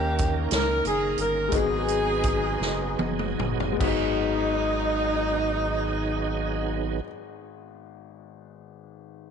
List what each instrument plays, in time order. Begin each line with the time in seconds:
Already playing: analog synth bass D#2, grand piano D#3 A#3 C#4 D#4 A#4 G5, saxophone section A#3 C#4 G4, tonewheel organ A#3 C#4 D#4 A#4
0.19 kick, closed hi-hat
0.51 analog synth bass C#2, saxophone section A#4, snare, closed hi-hat
0.85 analog synth bass F#1, saxophone section G#4, closed hi-hat
1.18 analog synth bass G1, saxophone section A#4, closed hi-hat
1.48 grand piano G#2 G#3 A#3 D#4, tonewheel organ F#3 B3, kick, closed hi-hat
1.52 analog synth bass G#1, saxophone section B3 D#4, tonewheel organ D#4 G#4, grand piano F#4 G#4
1.57 grand piano B3, saxophone section G#4
1.88 closed hi-hat
2.23 kick, closed hi-hat
2.60 analog synth bass F#1, snare
2.99 analog synth bass F#1, high tom
3.19 mid tom
3.39 analog synth bass G1, mid tom
3.60 floor tom
3.72 grand piano G#3 B3
3.80 grand piano G#1 D#4 F#4, analog synth bass G#1, tonewheel organ F#3 B3 D#4 G#4, saxophone section D#4, kick, crash
3.87 grand piano G#4